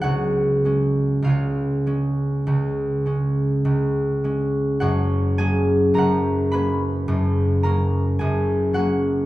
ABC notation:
X:1
M:4/4
L:1/8
Q:1/4=52
K:F#
V:1 name="Harp"
[FGcf]2 [Ece]6 | [Fcf] [Gg] [Afa] [Bb]2 [Aa] [Gg] [Ff] |]
V:2 name="Harp" clef=bass
[C,,C,] [G,C] [C,,C,] [G,C] [C,,C,] [G,C] [C,,C,] [G,C] | [F,,,F,,] [F,A,C] [F,,,F,,] [F,A,C] [F,,,F,,] [F,A,C] [F,,,F,,] [F,A,C] |]